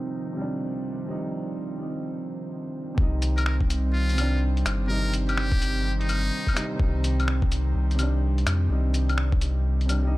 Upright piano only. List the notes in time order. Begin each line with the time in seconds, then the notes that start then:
Already playing: C3 G3 D#4
0.33 C3 G3
0.41 D4
1.06 C3 G3
1.10 D#4
2.95 C3 G3
3.02 D#4
4.13 C3 G3
4.21 D4
4.87 C3 G3
4.91 D#4
6.54 C3 G3
6.58 D#4
6.76 C3 G3
6.84 D#4
7.95 C3
7.99 G3 D4
8.68 C3 G3 D#4
9.86 C3 G3
9.90 D4
9.99 C3 G3
10.07 D#4